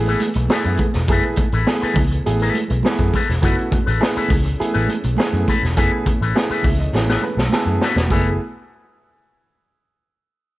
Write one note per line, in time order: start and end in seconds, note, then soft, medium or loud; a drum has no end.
0.00 0.15 A1 medium
0.00 8.07 E3 medium
0.00 0.24 A3 medium
0.00 8.07 A3 medium
0.00 0.24 B3 medium
0.00 3.40 B3 medium
0.00 0.24 E4 medium
0.00 0.24 G#4 loud
0.00 8.07 G#4 medium
0.05 0.22 B4 medium
0.05 closed hi-hat soft
0.05 muted conga soft
0.09 0.22 E4 medium
0.09 0.21 A4 medium
0.20 muted clean electric guitar stroke soft
0.20 closed hi-hat medium
0.20 high conga medium
0.34 0.47 B1 loud
0.34 muted clean electric guitar stroke soft
0.34 closed hi-hat medium
0.34 high conga medium
0.48 0.83 A3 loud
0.48 0.82 B3 medium
0.48 0.82 E4 medium
0.48 0.78 E4 medium
0.48 0.82 G#4 loud
0.48 0.78 A4 medium
0.48 snare loud
0.48 high conga medium
0.53 0.78 B4 loud
0.64 0.76 F#2 loud
0.64 closed hi-hat soft
0.64 muted conga soft
0.64 low conga medium
0.77 muted clean electric guitar stroke soft
0.77 kick medium
0.77 closed hi-hat medium
0.77 high conga medium
0.94 1.06 E1 loud
0.94 muted clean electric guitar stroke medium
0.94 snare soft
0.94 closed hi-hat medium
1.07 1.20 F#1 medium
1.07 1.41 A3 loud
1.07 1.41 B3 medium
1.07 1.41 E4 medium
1.07 1.30 E4 medium
1.07 1.41 G#4 loud
1.07 1.25 A4 medium
1.07 kick loud
1.07 closed hi-hat medium
1.07 muted conga soft
1.12 1.24 B4 medium
1.22 muted clean electric guitar stroke soft
1.22 closed hi-hat soft
1.22 muted conga soft
1.36 muted clean electric guitar stroke soft
1.36 kick medium
1.36 closed hi-hat medium
1.36 high conga medium
1.52 1.64 A1 medium
1.52 1.68 E4 medium
1.52 1.67 A4 medium
1.52 1.68 B4 medium
1.52 closed hi-hat soft
1.67 2.00 A3 medium
1.67 1.99 B3 medium
1.67 2.00 E4 medium
1.67 1.99 G#4 loud
1.67 snare medium
1.67 muted conga soft
1.81 1.96 E4 medium
1.81 1.96 A4 medium
1.81 1.96 B4 loud
1.81 muted picked electric bass stroke soft
1.81 closed hi-hat soft
1.94 2.19 C#2 medium
1.94 muted clean electric guitar stroke soft
1.94 kick loud
1.94 open hi-hat medium
1.94 high conga medium
1.94 low conga medium
2.11 muted clean electric guitar stroke soft
2.11 closed hi-hat medium
2.24 2.49 A1 medium
2.24 2.58 A3 medium
2.24 2.58 B3 medium
2.24 2.58 E4 medium
2.24 2.58 G#4 loud
2.24 muted clean electric guitar stroke soft
2.24 closed hi-hat medium
2.24 muted conga soft
2.39 2.56 E4 medium
2.39 2.56 A4 medium
2.39 2.57 B4 loud
2.39 closed hi-hat soft
2.54 muted clean electric guitar stroke soft
2.54 closed hi-hat medium
2.54 high conga medium
2.68 2.81 B1 loud
2.68 muted clean electric guitar stroke soft
2.68 closed hi-hat medium
2.68 high conga medium
2.83 3.17 A3 loud
2.83 3.17 B3 loud
2.83 3.17 E4 medium
2.83 3.17 G#4 loud
2.83 snare loud
2.83 muted conga soft
2.83 high conga loud
2.99 3.10 F#2 medium
2.99 muted clean electric guitar stroke soft
2.99 kick medium
2.99 closed hi-hat soft
2.99 low conga medium
3.13 3.34 E4 medium
3.13 3.29 A4 medium
3.13 3.28 B4 medium
3.13 kick medium
3.13 closed hi-hat medium
3.13 high conga medium
3.29 3.40 E1 medium
3.29 muted clean electric guitar stroke medium
3.29 snare soft
3.29 closed hi-hat medium
3.41 3.54 F#1 loud
3.41 3.75 A3 medium
3.41 3.75 B3 medium
3.41 8.06 C#4 medium
3.41 3.75 E4 medium
3.41 3.63 E4 medium
3.41 3.75 F#4 loud
3.41 3.57 A4 medium
3.41 3.56 B4 medium
3.41 kick medium
3.41 closed hi-hat medium
3.41 muted conga soft
3.57 muted clean electric guitar stroke soft
3.57 closed hi-hat soft
3.71 muted clean electric guitar stroke soft
3.71 kick medium
3.71 closed hi-hat medium
3.71 high conga medium
3.86 3.98 A1 medium
3.86 4.02 E4 medium
3.86 4.02 A4 medium
3.86 4.02 B4 medium
3.86 closed hi-hat soft
4.01 4.33 A3 loud
4.01 4.33 B3 medium
4.01 4.33 E4 medium
4.01 4.33 G#4 loud
4.01 snare loud
4.16 4.30 E4 medium
4.16 4.30 A4 medium
4.16 4.31 B4 medium
4.16 muted picked electric bass stroke soft
4.16 closed hi-hat soft
4.16 muted conga soft
4.28 4.53 C#2 medium
4.28 muted clean electric guitar stroke soft
4.28 kick loud
4.28 open hi-hat medium
4.28 high conga medium
4.28 low conga medium
4.45 muted clean electric guitar stroke soft
4.45 closed hi-hat medium
4.59 4.92 A3 medium
4.59 4.92 B3 medium
4.59 4.92 E4 medium
4.59 4.92 G#4 loud
4.59 muted clean electric guitar stroke soft
4.59 muted picked electric bass stroke soft
4.59 closed hi-hat medium
4.73 4.86 A1 medium
4.73 4.88 E4 medium
4.73 4.89 A4 medium
4.73 4.90 B4 medium
4.73 closed hi-hat soft
4.73 muted conga soft
4.88 muted clean electric guitar stroke soft
4.88 closed hi-hat medium
4.88 high conga medium
5.02 5.15 B1 loud
5.02 muted clean electric guitar stroke soft
5.02 closed hi-hat medium
5.02 high conga soft
5.17 5.50 A3 loud
5.17 5.50 B3 medium
5.17 5.50 E4 medium
5.17 5.50 G#4 loud
5.17 snare loud
5.17 muted conga soft
5.17 high conga loud
5.32 5.44 F#2 medium
5.32 muted clean electric guitar stroke soft
5.32 closed hi-hat soft
5.32 muted conga soft
5.32 low conga medium
5.47 5.68 E4 medium
5.47 5.63 A4 medium
5.47 5.62 B4 loud
5.47 kick medium
5.47 closed hi-hat medium
5.47 high conga medium
5.63 5.77 E1 loud
5.63 muted clean electric guitar stroke soft
5.63 snare soft
5.63 closed hi-hat medium
5.77 5.88 F#1 loud
5.77 6.09 A3 medium
5.77 6.09 B3 medium
5.77 6.09 E4 medium
5.77 5.97 E4 medium
5.77 6.09 G#4 loud
5.77 5.92 A4 medium
5.77 5.91 B4 medium
5.77 kick loud
5.77 closed hi-hat medium
5.93 muted clean electric guitar stroke soft
6.06 muted clean electric guitar stroke soft
6.06 kick medium
6.06 closed hi-hat medium
6.06 high conga medium
6.21 6.32 A1 medium
6.21 6.35 E4 medium
6.21 6.36 A4 medium
6.21 6.36 B4 medium
6.21 closed hi-hat soft
6.35 6.67 A3 medium
6.35 6.67 B3 medium
6.35 6.67 E4 medium
6.35 6.67 G#4 loud
6.35 muted clean electric guitar stroke soft
6.35 snare loud
6.35 muted conga soft
6.50 6.64 E4 medium
6.50 6.65 A4 medium
6.50 6.65 B4 medium
6.50 muted picked electric bass stroke soft
6.50 closed hi-hat soft
6.50 muted conga soft
6.63 6.87 C#2 medium
6.63 6.78 E5 medium
6.63 muted clean electric guitar stroke soft
6.63 kick loud
6.63 open hi-hat medium
6.63 high conga medium
6.63 low conga medium
6.79 6.93 D#5 medium
6.79 muted clean electric guitar stroke soft
6.79 closed hi-hat soft
6.92 7.16 A1 medium
6.92 7.26 A3 medium
6.92 7.26 B3 medium
6.92 7.26 E4 medium
6.92 7.26 G#4 loud
6.92 7.21 C#5 medium
6.92 muted clean electric guitar stroke soft
6.92 snare medium
6.92 muted conga soft
7.06 7.23 A4 medium
7.06 7.23 B4 medium
7.06 snare medium
7.06 muted conga soft
7.10 7.22 E4 medium
7.22 7.37 B4 medium
7.22 muted clean electric guitar stroke soft
7.22 high conga medium
7.35 7.48 B1 medium
7.35 7.51 A4 medium
7.35 muted clean electric guitar stroke soft
7.35 snare medium
7.35 high conga soft
7.50 7.84 A3 medium
7.50 7.85 B3 medium
7.50 7.85 E4 medium
7.50 7.84 G#4 loud
7.50 7.80 A4 medium
7.50 snare medium
7.50 muted conga soft
7.50 high conga medium
7.65 7.77 F#2 medium
7.65 muted clean electric guitar stroke soft
7.65 muted conga soft
7.65 low conga medium
7.79 8.09 F#4 medium
7.79 snare medium
7.79 high conga medium
7.83 8.02 E4 medium
7.83 7.96 A4 medium
7.83 7.96 B4 loud
7.96 8.07 E1 medium
7.96 muted clean electric guitar stroke soft
7.96 snare medium
8.08 8.38 F#1 medium
8.08 8.37 E3 medium
8.08 8.37 A3 medium
8.08 8.38 A3 medium
8.08 8.37 B3 medium
8.08 8.38 B3 medium
8.08 8.38 E4 medium
8.08 8.28 E4 medium
8.08 8.37 G#4 medium
8.08 8.38 G#4 medium
8.08 kick medium
8.08 splash medium
8.08 high conga medium
8.12 8.28 A4 medium
8.12 8.29 B4 medium